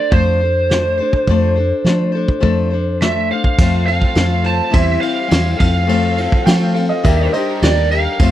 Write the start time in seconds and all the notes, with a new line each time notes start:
Already playing: D4 A4 C5 D5
0.11 F2 F3 A3 D4 A4 C5, kick, open hi-hat
0.41 D4 A4 C5
0.70 A3 D4 A4 C5, snare, open hi-hat
0.98 A4 C5
1.02 D4
1.13 kick
1.27 F2 F3 A3 D4 A4 C5, kick, open hi-hat
1.56 A4 C5
1.60 D4
1.84 F3 A3 D4 A4 C5, snare, open hi-hat
2.12 A4 C5
2.17 D4
2.28 kick
2.40 F2 F3 A3 D4 A4 C5, kick, open hi-hat
2.70 D4 A4 C5
3.00 A3 D4 A4 E5, snare, open hi-hat
3.04 C5
3.31 D4 A4 C5 F5
3.44 kick
3.58 F2 F3 A3 C4 F4 A4, kick, crash
3.62 C5
3.86 C4 F4 C5 F5, ride
4.02 kick
4.15 F2 A3 C4 F4, snare, ride
4.19 C5
4.44 C4 F4 C5 A5, ride
4.70 E2 E3 G3 C4 E4 G4 C5 E5, kick, ride
5.00 C4 E4 C5 F5, ride
5.28 E2 G3 C4 E4 C5, ride
5.32 snare
5.56 F2 A3 C4 F4 A4 F5, kick, ride
5.61 F3 C4 A4
5.87 F3 A3 C4 F4 A4, ride
6.17 C4 F4 A4, ride
6.32 kick
6.43 F3 A3 C4 F#5 G5
6.47 F4 A4, snare, ride
6.74 C4 F4 A4 F5, ride
6.89 D#5
7.03 D#2 D#3 G3 A#3 D4 D#4 G4 A#4 E5, kick, ride
7.32 D4 G4 A#4 C5 D#5, ride
7.62 D#2 A#3 D4 G4 A#4 D5, snare, ride
7.91 G4 A#4 F5, ride
7.96 D4
8.19 F2 F3 A3 C4 F4 A4 C5, kick, ride, tambourine